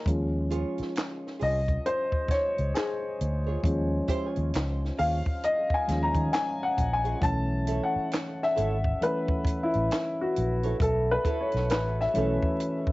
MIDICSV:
0, 0, Header, 1, 6, 480
1, 0, Start_track
1, 0, Tempo, 895522
1, 31, Time_signature, 4, 2, 24, 8
1, 6926, End_track
2, 0, Start_track
2, 0, Title_t, "Nylon-string guitar"
2, 0, Program_c, 0, 24
2, 271, Note_on_c, 0, 65, 85
2, 274, Note_on_c, 0, 68, 76
2, 280, Note_on_c, 0, 73, 88
2, 496, Note_off_c, 0, 65, 0
2, 497, Note_off_c, 0, 68, 0
2, 501, Note_off_c, 0, 73, 0
2, 747, Note_on_c, 0, 65, 54
2, 748, Note_on_c, 0, 68, 56
2, 755, Note_on_c, 0, 73, 61
2, 855, Note_off_c, 0, 65, 0
2, 856, Note_off_c, 0, 68, 0
2, 859, Note_off_c, 0, 73, 0
2, 1857, Note_on_c, 0, 73, 53
2, 1860, Note_on_c, 0, 68, 48
2, 1867, Note_on_c, 0, 65, 47
2, 1925, Note_off_c, 0, 73, 0
2, 1926, Note_off_c, 0, 68, 0
2, 1930, Note_off_c, 0, 65, 0
2, 2185, Note_on_c, 0, 64, 85
2, 2190, Note_on_c, 0, 67, 88
2, 2195, Note_on_c, 0, 72, 89
2, 2276, Note_off_c, 0, 64, 0
2, 2276, Note_on_c, 0, 65, 85
2, 2281, Note_off_c, 0, 67, 0
2, 2281, Note_on_c, 0, 68, 88
2, 2286, Note_off_c, 0, 72, 0
2, 2286, Note_on_c, 0, 73, 89
2, 2413, Note_off_c, 0, 65, 0
2, 2415, Note_off_c, 0, 68, 0
2, 2418, Note_off_c, 0, 73, 0
2, 2665, Note_on_c, 0, 65, 58
2, 2670, Note_on_c, 0, 68, 63
2, 2675, Note_on_c, 0, 73, 66
2, 2774, Note_off_c, 0, 65, 0
2, 2777, Note_off_c, 0, 68, 0
2, 2779, Note_off_c, 0, 73, 0
2, 3775, Note_on_c, 0, 73, 54
2, 3778, Note_on_c, 0, 68, 52
2, 3783, Note_on_c, 0, 65, 46
2, 3844, Note_off_c, 0, 73, 0
2, 3846, Note_off_c, 0, 68, 0
2, 3848, Note_off_c, 0, 65, 0
2, 4111, Note_on_c, 0, 64, 78
2, 4118, Note_on_c, 0, 69, 81
2, 4122, Note_on_c, 0, 73, 94
2, 4336, Note_off_c, 0, 64, 0
2, 4339, Note_off_c, 0, 69, 0
2, 4341, Note_off_c, 0, 73, 0
2, 4586, Note_on_c, 0, 64, 69
2, 4590, Note_on_c, 0, 69, 75
2, 4595, Note_on_c, 0, 73, 70
2, 4695, Note_off_c, 0, 64, 0
2, 4697, Note_off_c, 0, 69, 0
2, 4699, Note_off_c, 0, 73, 0
2, 5704, Note_on_c, 0, 73, 62
2, 5707, Note_on_c, 0, 69, 55
2, 5712, Note_on_c, 0, 64, 53
2, 5768, Note_off_c, 0, 73, 0
2, 5770, Note_off_c, 0, 69, 0
2, 5772, Note_off_c, 0, 64, 0
2, 6031, Note_on_c, 0, 64, 86
2, 6037, Note_on_c, 0, 69, 90
2, 6042, Note_on_c, 0, 73, 91
2, 6256, Note_off_c, 0, 64, 0
2, 6259, Note_off_c, 0, 69, 0
2, 6261, Note_off_c, 0, 73, 0
2, 6517, Note_on_c, 0, 64, 61
2, 6523, Note_on_c, 0, 69, 69
2, 6528, Note_on_c, 0, 73, 74
2, 6621, Note_off_c, 0, 64, 0
2, 6623, Note_off_c, 0, 69, 0
2, 6626, Note_off_c, 0, 73, 0
2, 6926, End_track
3, 0, Start_track
3, 0, Title_t, "Upright piano"
3, 0, Program_c, 1, 0
3, 0, Control_c, 1, 64, 127
3, 31, Note_on_c, 1, 53, 51
3, 35, Note_on_c, 1, 56, 45
3, 38, Control_c, 1, 64, 0
3, 39, Note_on_c, 1, 61, 54
3, 132, Control_c, 1, 64, 127
3, 764, Note_on_c, 1, 75, 94
3, 981, Note_off_c, 1, 75, 0
3, 996, Note_on_c, 1, 72, 88
3, 1236, Note_on_c, 1, 73, 88
3, 1240, Note_off_c, 1, 72, 0
3, 1457, Note_off_c, 1, 73, 0
3, 1471, Note_on_c, 1, 68, 72
3, 1929, Note_off_c, 1, 53, 0
3, 1931, Note_off_c, 1, 56, 0
3, 1934, Note_off_c, 1, 61, 0
3, 1943, Note_on_c, 1, 53, 51
3, 1948, Note_on_c, 1, 56, 46
3, 1951, Note_on_c, 1, 61, 56
3, 2169, Note_off_c, 1, 68, 0
3, 2286, Note_off_c, 1, 53, 0
3, 2289, Note_off_c, 1, 56, 0
3, 2291, Note_off_c, 1, 61, 0
3, 2672, Note_on_c, 1, 77, 94
3, 2726, Note_off_c, 1, 77, 0
3, 2917, Note_on_c, 1, 75, 98
3, 3077, Note_on_c, 1, 80, 94
3, 3079, Note_off_c, 1, 75, 0
3, 3147, Note_on_c, 1, 53, 47
3, 3148, Note_on_c, 1, 56, 42
3, 3151, Note_on_c, 1, 61, 52
3, 3223, Note_off_c, 1, 80, 0
3, 3231, Note_on_c, 1, 82, 94
3, 3367, Note_off_c, 1, 53, 0
3, 3368, Note_off_c, 1, 56, 0
3, 3369, Note_off_c, 1, 61, 0
3, 3393, Note_on_c, 1, 80, 104
3, 3396, Note_off_c, 1, 82, 0
3, 3554, Note_on_c, 1, 78, 93
3, 3557, Note_off_c, 1, 80, 0
3, 3716, Note_on_c, 1, 80, 92
3, 3717, Note_off_c, 1, 78, 0
3, 3863, Note_on_c, 1, 52, 52
3, 3865, Note_on_c, 1, 57, 50
3, 3871, Note_on_c, 1, 61, 58
3, 3875, Note_on_c, 1, 81, 92
3, 3877, Control_c, 1, 64, 0
3, 3878, Note_off_c, 1, 80, 0
3, 3973, Control_c, 1, 64, 127
3, 4200, Note_on_c, 1, 78, 84
3, 4202, Note_off_c, 1, 81, 0
3, 4520, Note_on_c, 1, 76, 86
3, 4525, Note_off_c, 1, 78, 0
3, 4565, Note_off_c, 1, 52, 0
3, 4567, Note_off_c, 1, 57, 0
3, 4569, Note_off_c, 1, 61, 0
3, 4814, Note_off_c, 1, 76, 0
3, 4830, Note_on_c, 1, 52, 49
3, 4832, Note_on_c, 1, 57, 45
3, 4833, Note_on_c, 1, 61, 54
3, 4841, Note_on_c, 1, 71, 88
3, 5049, Note_off_c, 1, 52, 0
3, 5050, Note_off_c, 1, 57, 0
3, 5051, Note_off_c, 1, 61, 0
3, 5163, Note_on_c, 1, 64, 86
3, 5165, Note_off_c, 1, 71, 0
3, 5475, Note_on_c, 1, 66, 82
3, 5486, Note_off_c, 1, 64, 0
3, 5799, Note_on_c, 1, 69, 85
3, 5802, Note_off_c, 1, 66, 0
3, 5834, Note_off_c, 1, 69, 0
3, 5957, Note_on_c, 1, 71, 92
3, 6113, Note_on_c, 1, 73, 76
3, 6118, Note_off_c, 1, 71, 0
3, 6276, Note_on_c, 1, 71, 82
3, 6277, Note_off_c, 1, 73, 0
3, 6436, Note_on_c, 1, 76, 78
3, 6438, Note_off_c, 1, 71, 0
3, 6505, Note_on_c, 1, 52, 55
3, 6508, Note_on_c, 1, 57, 51
3, 6512, Note_on_c, 1, 61, 65
3, 6892, Note_off_c, 1, 76, 0
3, 6926, Note_off_c, 1, 52, 0
3, 6926, Note_off_c, 1, 57, 0
3, 6926, Note_off_c, 1, 61, 0
3, 6926, End_track
4, 0, Start_track
4, 0, Title_t, "Fingered electric bass"
4, 0, Program_c, 2, 33
4, 38, Note_on_c, 2, 39, 81
4, 339, Note_off_c, 2, 39, 0
4, 762, Note_on_c, 2, 36, 83
4, 946, Note_off_c, 2, 36, 0
4, 1388, Note_on_c, 2, 37, 74
4, 1457, Note_off_c, 2, 37, 0
4, 1721, Note_on_c, 2, 38, 87
4, 1905, Note_off_c, 2, 38, 0
4, 1955, Note_on_c, 2, 39, 98
4, 2141, Note_off_c, 2, 39, 0
4, 2344, Note_on_c, 2, 39, 81
4, 2414, Note_off_c, 2, 39, 0
4, 2439, Note_on_c, 2, 37, 90
4, 2624, Note_off_c, 2, 37, 0
4, 2677, Note_on_c, 2, 39, 87
4, 2790, Note_off_c, 2, 39, 0
4, 3157, Note_on_c, 2, 39, 81
4, 3270, Note_off_c, 2, 39, 0
4, 3299, Note_on_c, 2, 51, 86
4, 3372, Note_off_c, 2, 51, 0
4, 3638, Note_on_c, 2, 34, 80
4, 3824, Note_off_c, 2, 34, 0
4, 3872, Note_on_c, 2, 35, 102
4, 4175, Note_off_c, 2, 35, 0
4, 4600, Note_on_c, 2, 32, 94
4, 4784, Note_off_c, 2, 32, 0
4, 5228, Note_on_c, 2, 33, 84
4, 5297, Note_off_c, 2, 33, 0
4, 5563, Note_on_c, 2, 34, 84
4, 5746, Note_off_c, 2, 34, 0
4, 5794, Note_on_c, 2, 35, 100
4, 5981, Note_off_c, 2, 35, 0
4, 6188, Note_on_c, 2, 35, 89
4, 6277, Note_off_c, 2, 35, 0
4, 6277, Note_on_c, 2, 33, 92
4, 6463, Note_off_c, 2, 33, 0
4, 6519, Note_on_c, 2, 35, 94
4, 6631, Note_off_c, 2, 35, 0
4, 6926, End_track
5, 0, Start_track
5, 0, Title_t, "Muted fingered electric bass strokes"
5, 426, Note_on_c, 9, 29, 43
5, 480, Note_off_c, 9, 29, 0
5, 1230, Note_on_c, 9, 29, 42
5, 1283, Note_off_c, 9, 29, 0
5, 4265, Note_on_c, 9, 29, 46
5, 4319, Note_off_c, 9, 29, 0
5, 5069, Note_on_c, 9, 29, 45
5, 5123, Note_off_c, 9, 29, 0
5, 6926, End_track
6, 0, Start_track
6, 0, Title_t, "Drums"
6, 32, Note_on_c, 9, 36, 109
6, 40, Note_on_c, 9, 42, 70
6, 85, Note_off_c, 9, 36, 0
6, 93, Note_off_c, 9, 42, 0
6, 275, Note_on_c, 9, 42, 64
6, 329, Note_off_c, 9, 42, 0
6, 418, Note_on_c, 9, 42, 34
6, 438, Note_on_c, 9, 38, 37
6, 471, Note_off_c, 9, 42, 0
6, 492, Note_off_c, 9, 38, 0
6, 513, Note_on_c, 9, 42, 67
6, 526, Note_on_c, 9, 38, 110
6, 528, Note_on_c, 9, 39, 82
6, 566, Note_off_c, 9, 42, 0
6, 580, Note_off_c, 9, 38, 0
6, 581, Note_off_c, 9, 39, 0
6, 680, Note_on_c, 9, 38, 35
6, 734, Note_off_c, 9, 38, 0
6, 755, Note_on_c, 9, 46, 44
6, 809, Note_off_c, 9, 46, 0
6, 901, Note_on_c, 9, 36, 78
6, 903, Note_on_c, 9, 42, 30
6, 955, Note_off_c, 9, 36, 0
6, 956, Note_off_c, 9, 42, 0
6, 996, Note_on_c, 9, 42, 81
6, 1050, Note_off_c, 9, 42, 0
6, 1137, Note_on_c, 9, 36, 77
6, 1191, Note_off_c, 9, 36, 0
6, 1224, Note_on_c, 9, 36, 93
6, 1236, Note_on_c, 9, 42, 76
6, 1247, Note_on_c, 9, 38, 36
6, 1278, Note_off_c, 9, 36, 0
6, 1290, Note_off_c, 9, 42, 0
6, 1301, Note_off_c, 9, 38, 0
6, 1383, Note_on_c, 9, 42, 34
6, 1437, Note_off_c, 9, 42, 0
6, 1475, Note_on_c, 9, 42, 68
6, 1484, Note_on_c, 9, 38, 96
6, 1486, Note_on_c, 9, 39, 72
6, 1529, Note_off_c, 9, 42, 0
6, 1538, Note_off_c, 9, 38, 0
6, 1540, Note_off_c, 9, 39, 0
6, 1719, Note_on_c, 9, 42, 59
6, 1772, Note_off_c, 9, 42, 0
6, 1948, Note_on_c, 9, 36, 110
6, 1956, Note_on_c, 9, 42, 75
6, 2002, Note_off_c, 9, 36, 0
6, 2009, Note_off_c, 9, 42, 0
6, 2188, Note_on_c, 9, 36, 88
6, 2193, Note_on_c, 9, 42, 68
6, 2242, Note_off_c, 9, 36, 0
6, 2247, Note_off_c, 9, 42, 0
6, 2336, Note_on_c, 9, 42, 34
6, 2390, Note_off_c, 9, 42, 0
6, 2432, Note_on_c, 9, 42, 76
6, 2445, Note_on_c, 9, 38, 106
6, 2447, Note_on_c, 9, 39, 83
6, 2485, Note_off_c, 9, 42, 0
6, 2499, Note_off_c, 9, 38, 0
6, 2500, Note_off_c, 9, 39, 0
6, 2599, Note_on_c, 9, 38, 36
6, 2653, Note_off_c, 9, 38, 0
6, 2674, Note_on_c, 9, 46, 48
6, 2727, Note_off_c, 9, 46, 0
6, 2820, Note_on_c, 9, 36, 78
6, 2873, Note_off_c, 9, 36, 0
6, 2912, Note_on_c, 9, 42, 85
6, 2966, Note_off_c, 9, 42, 0
6, 3055, Note_on_c, 9, 36, 79
6, 3109, Note_off_c, 9, 36, 0
6, 3154, Note_on_c, 9, 42, 78
6, 3165, Note_on_c, 9, 38, 40
6, 3207, Note_off_c, 9, 42, 0
6, 3219, Note_off_c, 9, 38, 0
6, 3294, Note_on_c, 9, 36, 88
6, 3296, Note_on_c, 9, 42, 36
6, 3347, Note_off_c, 9, 36, 0
6, 3350, Note_off_c, 9, 42, 0
6, 3392, Note_on_c, 9, 42, 68
6, 3402, Note_on_c, 9, 38, 94
6, 3403, Note_on_c, 9, 39, 81
6, 3446, Note_off_c, 9, 42, 0
6, 3455, Note_off_c, 9, 38, 0
6, 3457, Note_off_c, 9, 39, 0
6, 3633, Note_on_c, 9, 42, 65
6, 3634, Note_on_c, 9, 36, 87
6, 3687, Note_off_c, 9, 36, 0
6, 3687, Note_off_c, 9, 42, 0
6, 3778, Note_on_c, 9, 42, 33
6, 3832, Note_off_c, 9, 42, 0
6, 3868, Note_on_c, 9, 36, 111
6, 3874, Note_on_c, 9, 42, 77
6, 3922, Note_off_c, 9, 36, 0
6, 3928, Note_off_c, 9, 42, 0
6, 4111, Note_on_c, 9, 42, 67
6, 4164, Note_off_c, 9, 42, 0
6, 4350, Note_on_c, 9, 42, 71
6, 4364, Note_on_c, 9, 38, 104
6, 4365, Note_on_c, 9, 39, 84
6, 4404, Note_off_c, 9, 42, 0
6, 4417, Note_off_c, 9, 38, 0
6, 4419, Note_off_c, 9, 39, 0
6, 4517, Note_on_c, 9, 38, 38
6, 4571, Note_off_c, 9, 38, 0
6, 4596, Note_on_c, 9, 42, 67
6, 4649, Note_off_c, 9, 42, 0
6, 4740, Note_on_c, 9, 36, 79
6, 4793, Note_off_c, 9, 36, 0
6, 4834, Note_on_c, 9, 42, 85
6, 4888, Note_off_c, 9, 42, 0
6, 4976, Note_on_c, 9, 36, 84
6, 5029, Note_off_c, 9, 36, 0
6, 5063, Note_on_c, 9, 36, 95
6, 5074, Note_on_c, 9, 42, 79
6, 5117, Note_off_c, 9, 36, 0
6, 5128, Note_off_c, 9, 42, 0
6, 5219, Note_on_c, 9, 42, 33
6, 5272, Note_off_c, 9, 42, 0
6, 5312, Note_on_c, 9, 42, 72
6, 5321, Note_on_c, 9, 38, 104
6, 5323, Note_on_c, 9, 39, 81
6, 5365, Note_off_c, 9, 42, 0
6, 5375, Note_off_c, 9, 38, 0
6, 5376, Note_off_c, 9, 39, 0
6, 5554, Note_on_c, 9, 42, 65
6, 5607, Note_off_c, 9, 42, 0
6, 5699, Note_on_c, 9, 42, 36
6, 5753, Note_off_c, 9, 42, 0
6, 5789, Note_on_c, 9, 36, 118
6, 5796, Note_on_c, 9, 42, 75
6, 5842, Note_off_c, 9, 36, 0
6, 5849, Note_off_c, 9, 42, 0
6, 6029, Note_on_c, 9, 36, 91
6, 6031, Note_on_c, 9, 42, 73
6, 6082, Note_off_c, 9, 36, 0
6, 6085, Note_off_c, 9, 42, 0
6, 6173, Note_on_c, 9, 42, 34
6, 6194, Note_on_c, 9, 38, 39
6, 6227, Note_off_c, 9, 42, 0
6, 6248, Note_off_c, 9, 38, 0
6, 6269, Note_on_c, 9, 42, 78
6, 6283, Note_on_c, 9, 38, 109
6, 6284, Note_on_c, 9, 39, 88
6, 6323, Note_off_c, 9, 42, 0
6, 6337, Note_off_c, 9, 38, 0
6, 6338, Note_off_c, 9, 39, 0
6, 6435, Note_on_c, 9, 38, 38
6, 6489, Note_off_c, 9, 38, 0
6, 6510, Note_on_c, 9, 42, 72
6, 6564, Note_off_c, 9, 42, 0
6, 6660, Note_on_c, 9, 36, 81
6, 6713, Note_off_c, 9, 36, 0
6, 6753, Note_on_c, 9, 42, 91
6, 6807, Note_off_c, 9, 42, 0
6, 6897, Note_on_c, 9, 36, 89
6, 6926, Note_off_c, 9, 36, 0
6, 6926, End_track
0, 0, End_of_file